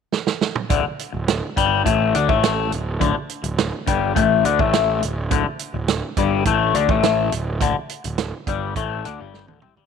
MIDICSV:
0, 0, Header, 1, 6, 480
1, 0, Start_track
1, 0, Tempo, 575816
1, 588, Time_signature, 4, 2, 24, 8
1, 8220, End_track
2, 0, Start_track
2, 0, Title_t, "Clean electric guitar"
2, 0, Program_c, 0, 27
2, 581, Note_on_c, 0, 38, 96
2, 587, Note_on_c, 0, 50, 104
2, 693, Note_off_c, 0, 38, 0
2, 701, Note_off_c, 0, 50, 0
2, 938, Note_on_c, 0, 38, 75
2, 1137, Note_off_c, 0, 38, 0
2, 1304, Note_on_c, 0, 43, 83
2, 1311, Note_on_c, 0, 55, 100
2, 1536, Note_off_c, 0, 43, 0
2, 1539, Note_on_c, 0, 45, 87
2, 1544, Note_off_c, 0, 55, 0
2, 1547, Note_on_c, 0, 57, 94
2, 1779, Note_off_c, 0, 45, 0
2, 1783, Note_off_c, 0, 57, 0
2, 1786, Note_on_c, 0, 50, 75
2, 1792, Note_on_c, 0, 62, 86
2, 1902, Note_off_c, 0, 50, 0
2, 1902, Note_on_c, 0, 45, 83
2, 1905, Note_off_c, 0, 62, 0
2, 1908, Note_on_c, 0, 57, 97
2, 2259, Note_off_c, 0, 45, 0
2, 2263, Note_on_c, 0, 38, 78
2, 2264, Note_off_c, 0, 57, 0
2, 2460, Note_off_c, 0, 38, 0
2, 2501, Note_on_c, 0, 38, 85
2, 2507, Note_on_c, 0, 50, 92
2, 2616, Note_off_c, 0, 38, 0
2, 2623, Note_off_c, 0, 50, 0
2, 2866, Note_on_c, 0, 38, 77
2, 3061, Note_off_c, 0, 38, 0
2, 3222, Note_on_c, 0, 43, 82
2, 3232, Note_on_c, 0, 55, 111
2, 3456, Note_off_c, 0, 43, 0
2, 3460, Note_on_c, 0, 45, 87
2, 3464, Note_off_c, 0, 55, 0
2, 3468, Note_on_c, 0, 57, 95
2, 3699, Note_off_c, 0, 45, 0
2, 3703, Note_off_c, 0, 57, 0
2, 3706, Note_on_c, 0, 50, 89
2, 3714, Note_on_c, 0, 62, 94
2, 3822, Note_off_c, 0, 50, 0
2, 3826, Note_off_c, 0, 62, 0
2, 3827, Note_on_c, 0, 45, 79
2, 3837, Note_on_c, 0, 57, 94
2, 4182, Note_off_c, 0, 45, 0
2, 4187, Note_off_c, 0, 57, 0
2, 4188, Note_on_c, 0, 38, 75
2, 4381, Note_off_c, 0, 38, 0
2, 4424, Note_on_c, 0, 38, 94
2, 4437, Note_on_c, 0, 50, 107
2, 4540, Note_off_c, 0, 38, 0
2, 4547, Note_off_c, 0, 50, 0
2, 4787, Note_on_c, 0, 38, 78
2, 4980, Note_off_c, 0, 38, 0
2, 5148, Note_on_c, 0, 43, 85
2, 5156, Note_on_c, 0, 55, 104
2, 5381, Note_off_c, 0, 43, 0
2, 5385, Note_off_c, 0, 55, 0
2, 5385, Note_on_c, 0, 45, 78
2, 5393, Note_on_c, 0, 57, 103
2, 5619, Note_off_c, 0, 45, 0
2, 5623, Note_off_c, 0, 57, 0
2, 5625, Note_on_c, 0, 50, 99
2, 5633, Note_on_c, 0, 62, 84
2, 5739, Note_off_c, 0, 50, 0
2, 5743, Note_off_c, 0, 62, 0
2, 5748, Note_on_c, 0, 45, 88
2, 5756, Note_on_c, 0, 57, 94
2, 6100, Note_off_c, 0, 45, 0
2, 6104, Note_off_c, 0, 57, 0
2, 6105, Note_on_c, 0, 38, 71
2, 6297, Note_off_c, 0, 38, 0
2, 6345, Note_on_c, 0, 38, 94
2, 6352, Note_on_c, 0, 50, 101
2, 6455, Note_off_c, 0, 38, 0
2, 6462, Note_off_c, 0, 50, 0
2, 6711, Note_on_c, 0, 38, 71
2, 6900, Note_off_c, 0, 38, 0
2, 7065, Note_on_c, 0, 43, 77
2, 7073, Note_on_c, 0, 55, 97
2, 7298, Note_off_c, 0, 43, 0
2, 7302, Note_off_c, 0, 55, 0
2, 7304, Note_on_c, 0, 45, 81
2, 7310, Note_on_c, 0, 57, 88
2, 7537, Note_off_c, 0, 45, 0
2, 7540, Note_off_c, 0, 57, 0
2, 7540, Note_on_c, 0, 50, 80
2, 7549, Note_on_c, 0, 62, 88
2, 7655, Note_off_c, 0, 50, 0
2, 7660, Note_off_c, 0, 62, 0
2, 7660, Note_on_c, 0, 43, 81
2, 7673, Note_on_c, 0, 55, 96
2, 7894, Note_off_c, 0, 43, 0
2, 7898, Note_on_c, 0, 38, 88
2, 7902, Note_off_c, 0, 55, 0
2, 7907, Note_on_c, 0, 50, 89
2, 8012, Note_off_c, 0, 38, 0
2, 8016, Note_on_c, 0, 48, 88
2, 8019, Note_off_c, 0, 50, 0
2, 8023, Note_on_c, 0, 60, 96
2, 8133, Note_off_c, 0, 48, 0
2, 8137, Note_off_c, 0, 60, 0
2, 8141, Note_on_c, 0, 43, 79
2, 8147, Note_on_c, 0, 55, 98
2, 8220, Note_off_c, 0, 43, 0
2, 8220, Note_off_c, 0, 55, 0
2, 8220, End_track
3, 0, Start_track
3, 0, Title_t, "Picked electric bass"
3, 0, Program_c, 1, 34
3, 585, Note_on_c, 1, 26, 92
3, 698, Note_off_c, 1, 26, 0
3, 952, Note_on_c, 1, 26, 75
3, 1175, Note_off_c, 1, 26, 0
3, 1310, Note_on_c, 1, 31, 84
3, 1534, Note_off_c, 1, 31, 0
3, 1552, Note_on_c, 1, 33, 90
3, 1776, Note_off_c, 1, 33, 0
3, 1793, Note_on_c, 1, 38, 83
3, 1904, Note_off_c, 1, 38, 0
3, 1912, Note_on_c, 1, 33, 85
3, 2248, Note_off_c, 1, 33, 0
3, 2277, Note_on_c, 1, 26, 75
3, 2499, Note_off_c, 1, 26, 0
3, 2513, Note_on_c, 1, 26, 98
3, 2625, Note_off_c, 1, 26, 0
3, 2863, Note_on_c, 1, 26, 70
3, 3091, Note_off_c, 1, 26, 0
3, 3230, Note_on_c, 1, 31, 94
3, 3455, Note_off_c, 1, 31, 0
3, 3472, Note_on_c, 1, 33, 111
3, 3695, Note_off_c, 1, 33, 0
3, 3714, Note_on_c, 1, 38, 96
3, 3825, Note_off_c, 1, 38, 0
3, 3830, Note_on_c, 1, 33, 94
3, 4165, Note_off_c, 1, 33, 0
3, 4193, Note_on_c, 1, 26, 86
3, 4415, Note_off_c, 1, 26, 0
3, 4427, Note_on_c, 1, 26, 83
3, 4541, Note_off_c, 1, 26, 0
3, 4784, Note_on_c, 1, 26, 76
3, 5009, Note_off_c, 1, 26, 0
3, 5144, Note_on_c, 1, 31, 90
3, 5369, Note_off_c, 1, 31, 0
3, 5380, Note_on_c, 1, 33, 99
3, 5607, Note_off_c, 1, 33, 0
3, 5614, Note_on_c, 1, 38, 80
3, 5732, Note_off_c, 1, 38, 0
3, 5741, Note_on_c, 1, 33, 83
3, 6078, Note_off_c, 1, 33, 0
3, 6101, Note_on_c, 1, 26, 71
3, 6326, Note_off_c, 1, 26, 0
3, 6342, Note_on_c, 1, 26, 103
3, 6455, Note_off_c, 1, 26, 0
3, 6711, Note_on_c, 1, 26, 80
3, 6932, Note_off_c, 1, 26, 0
3, 7062, Note_on_c, 1, 31, 84
3, 7286, Note_off_c, 1, 31, 0
3, 7301, Note_on_c, 1, 33, 102
3, 7526, Note_off_c, 1, 33, 0
3, 7553, Note_on_c, 1, 38, 77
3, 7661, Note_off_c, 1, 38, 0
3, 7673, Note_on_c, 1, 31, 90
3, 7893, Note_off_c, 1, 31, 0
3, 7912, Note_on_c, 1, 26, 82
3, 8020, Note_off_c, 1, 26, 0
3, 8031, Note_on_c, 1, 36, 92
3, 8135, Note_off_c, 1, 36, 0
3, 8140, Note_on_c, 1, 31, 89
3, 8220, Note_off_c, 1, 31, 0
3, 8220, End_track
4, 0, Start_track
4, 0, Title_t, "Muted clean electric guitar strokes"
4, 703, Note_on_c, 9, 29, 58
4, 786, Note_off_c, 9, 29, 0
4, 2626, Note_on_c, 9, 29, 66
4, 2709, Note_off_c, 9, 29, 0
4, 4555, Note_on_c, 9, 29, 70
4, 4638, Note_off_c, 9, 29, 0
4, 6465, Note_on_c, 9, 29, 62
4, 6549, Note_off_c, 9, 29, 0
4, 8220, End_track
5, 0, Start_track
5, 0, Title_t, "Muted picked electric bass strokes"
5, 712, Note_on_c, 9, 29, 39
5, 795, Note_off_c, 9, 29, 0
5, 2633, Note_on_c, 9, 29, 38
5, 2716, Note_off_c, 9, 29, 0
5, 4551, Note_on_c, 9, 29, 36
5, 4635, Note_off_c, 9, 29, 0
5, 6472, Note_on_c, 9, 29, 38
5, 6555, Note_off_c, 9, 29, 0
5, 8220, End_track
6, 0, Start_track
6, 0, Title_t, "Drums"
6, 104, Note_on_c, 9, 38, 59
6, 187, Note_off_c, 9, 38, 0
6, 223, Note_on_c, 9, 38, 76
6, 307, Note_off_c, 9, 38, 0
6, 345, Note_on_c, 9, 38, 88
6, 428, Note_off_c, 9, 38, 0
6, 462, Note_on_c, 9, 45, 86
6, 546, Note_off_c, 9, 45, 0
6, 584, Note_on_c, 9, 42, 64
6, 585, Note_on_c, 9, 36, 101
6, 667, Note_off_c, 9, 42, 0
6, 669, Note_off_c, 9, 36, 0
6, 828, Note_on_c, 9, 42, 70
6, 912, Note_off_c, 9, 42, 0
6, 1068, Note_on_c, 9, 42, 63
6, 1069, Note_on_c, 9, 38, 102
6, 1151, Note_off_c, 9, 42, 0
6, 1153, Note_off_c, 9, 38, 0
6, 1309, Note_on_c, 9, 36, 89
6, 1313, Note_on_c, 9, 42, 67
6, 1392, Note_off_c, 9, 36, 0
6, 1396, Note_off_c, 9, 42, 0
6, 1550, Note_on_c, 9, 36, 97
6, 1553, Note_on_c, 9, 42, 65
6, 1634, Note_off_c, 9, 36, 0
6, 1636, Note_off_c, 9, 42, 0
6, 1789, Note_on_c, 9, 42, 76
6, 1873, Note_off_c, 9, 42, 0
6, 1910, Note_on_c, 9, 36, 103
6, 1993, Note_off_c, 9, 36, 0
6, 2029, Note_on_c, 9, 42, 68
6, 2031, Note_on_c, 9, 38, 106
6, 2113, Note_off_c, 9, 42, 0
6, 2114, Note_off_c, 9, 38, 0
6, 2269, Note_on_c, 9, 42, 68
6, 2352, Note_off_c, 9, 42, 0
6, 2510, Note_on_c, 9, 36, 116
6, 2512, Note_on_c, 9, 42, 74
6, 2593, Note_off_c, 9, 36, 0
6, 2595, Note_off_c, 9, 42, 0
6, 2746, Note_on_c, 9, 42, 61
6, 2830, Note_off_c, 9, 42, 0
6, 2865, Note_on_c, 9, 42, 57
6, 2948, Note_off_c, 9, 42, 0
6, 2987, Note_on_c, 9, 42, 60
6, 2989, Note_on_c, 9, 38, 105
6, 3071, Note_off_c, 9, 42, 0
6, 3072, Note_off_c, 9, 38, 0
6, 3228, Note_on_c, 9, 42, 69
6, 3230, Note_on_c, 9, 36, 97
6, 3311, Note_off_c, 9, 42, 0
6, 3313, Note_off_c, 9, 36, 0
6, 3470, Note_on_c, 9, 36, 100
6, 3473, Note_on_c, 9, 42, 65
6, 3553, Note_off_c, 9, 36, 0
6, 3556, Note_off_c, 9, 42, 0
6, 3709, Note_on_c, 9, 42, 70
6, 3792, Note_off_c, 9, 42, 0
6, 3829, Note_on_c, 9, 36, 106
6, 3912, Note_off_c, 9, 36, 0
6, 3946, Note_on_c, 9, 42, 61
6, 3948, Note_on_c, 9, 38, 101
6, 4030, Note_off_c, 9, 42, 0
6, 4031, Note_off_c, 9, 38, 0
6, 4190, Note_on_c, 9, 42, 68
6, 4273, Note_off_c, 9, 42, 0
6, 4427, Note_on_c, 9, 36, 102
6, 4427, Note_on_c, 9, 42, 67
6, 4510, Note_off_c, 9, 42, 0
6, 4511, Note_off_c, 9, 36, 0
6, 4662, Note_on_c, 9, 42, 64
6, 4745, Note_off_c, 9, 42, 0
6, 4903, Note_on_c, 9, 42, 64
6, 4905, Note_on_c, 9, 38, 92
6, 4986, Note_off_c, 9, 42, 0
6, 4988, Note_off_c, 9, 38, 0
6, 5142, Note_on_c, 9, 42, 60
6, 5143, Note_on_c, 9, 36, 91
6, 5225, Note_off_c, 9, 42, 0
6, 5226, Note_off_c, 9, 36, 0
6, 5380, Note_on_c, 9, 42, 67
6, 5382, Note_on_c, 9, 36, 87
6, 5463, Note_off_c, 9, 42, 0
6, 5465, Note_off_c, 9, 36, 0
6, 5624, Note_on_c, 9, 42, 74
6, 5707, Note_off_c, 9, 42, 0
6, 5743, Note_on_c, 9, 36, 111
6, 5826, Note_off_c, 9, 36, 0
6, 5863, Note_on_c, 9, 42, 62
6, 5864, Note_on_c, 9, 38, 92
6, 5946, Note_off_c, 9, 42, 0
6, 5948, Note_off_c, 9, 38, 0
6, 6104, Note_on_c, 9, 42, 75
6, 6187, Note_off_c, 9, 42, 0
6, 6341, Note_on_c, 9, 36, 97
6, 6345, Note_on_c, 9, 42, 75
6, 6424, Note_off_c, 9, 36, 0
6, 6428, Note_off_c, 9, 42, 0
6, 6581, Note_on_c, 9, 42, 74
6, 6664, Note_off_c, 9, 42, 0
6, 6703, Note_on_c, 9, 42, 56
6, 6786, Note_off_c, 9, 42, 0
6, 6818, Note_on_c, 9, 42, 56
6, 6820, Note_on_c, 9, 38, 97
6, 6901, Note_off_c, 9, 42, 0
6, 6903, Note_off_c, 9, 38, 0
6, 7061, Note_on_c, 9, 36, 101
6, 7064, Note_on_c, 9, 42, 65
6, 7144, Note_off_c, 9, 36, 0
6, 7148, Note_off_c, 9, 42, 0
6, 7301, Note_on_c, 9, 36, 96
6, 7303, Note_on_c, 9, 42, 60
6, 7385, Note_off_c, 9, 36, 0
6, 7386, Note_off_c, 9, 42, 0
6, 7545, Note_on_c, 9, 42, 71
6, 7628, Note_off_c, 9, 42, 0
6, 7784, Note_on_c, 9, 38, 55
6, 7867, Note_off_c, 9, 38, 0
6, 7903, Note_on_c, 9, 48, 60
6, 7986, Note_off_c, 9, 48, 0
6, 8018, Note_on_c, 9, 45, 89
6, 8102, Note_off_c, 9, 45, 0
6, 8143, Note_on_c, 9, 43, 71
6, 8220, Note_off_c, 9, 43, 0
6, 8220, End_track
0, 0, End_of_file